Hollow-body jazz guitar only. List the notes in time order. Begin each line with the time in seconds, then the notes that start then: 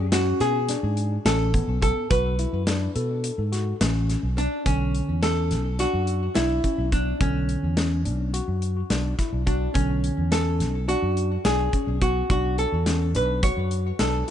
0.13 F#4
0.41 G#4
1.26 A4
1.83 A4
2.10 B4
4.38 D4
4.66 C#4
5.23 A4
5.80 F#4
6.36 E4
6.93 D4
7.21 C#4
9.47 D4
9.74 C#4
10.32 A4
10.89 F#4
11.45 G#4
12.02 F#4
12.31 F#4
12.59 A4
13.16 B4
13.44 C#5
14.00 A4